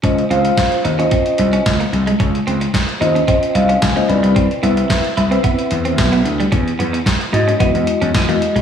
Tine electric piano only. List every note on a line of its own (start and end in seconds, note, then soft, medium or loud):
0.03 0.24 C#4 medium
0.03 0.24 F4 medium
0.03 0.24 C5 medium
0.03 0.24 D#5 medium
0.30 0.80 C#4 medium
0.30 0.80 F4 medium
0.30 0.81 C5 medium
0.30 0.81 F5 loud
0.98 1.78 C#4 medium
0.98 1.78 F4 medium
0.98 1.78 C5 medium
0.98 1.78 D#5 medium
3.00 3.21 C#4 medium
3.00 3.21 F4 medium
3.00 3.21 C5 medium
3.00 3.21 D#5 loud
3.27 3.78 C#4 medium
3.27 3.78 F4 medium
3.27 3.78 C5 medium
3.27 3.78 D#5 medium
3.55 3.80 F5 medium
3.82 4.07 G#5 medium
3.96 4.09 C#4 medium
3.96 4.09 F4 medium
3.96 4.09 C5 medium
3.96 4.09 D#5 loud
4.09 4.53 C4 medium
4.09 4.16 D4 medium
4.09 4.53 B4 medium
4.09 4.53 D5 medium
4.09 4.34 B5 medium
4.15 4.56 E4 medium
4.62 5.13 C4 medium
4.62 5.13 E4 medium
4.62 5.13 B4 medium
4.62 5.13 E5 loud
5.31 6.10 C4 medium
5.31 6.10 E4 medium
5.31 6.11 B4 medium
5.31 6.11 E5 loud
7.32 7.53 G#3 medium
7.32 7.53 E4 medium
7.32 7.53 F#4 medium
7.32 7.54 D#5 loud
7.59 8.10 G#3 medium
7.59 8.10 E4 medium
7.59 8.10 F#4 medium
7.59 8.10 D#5 medium
8.28 8.58 G#3 medium
8.28 8.58 E4 medium
8.28 8.58 F#4 medium
8.28 8.58 D#5 medium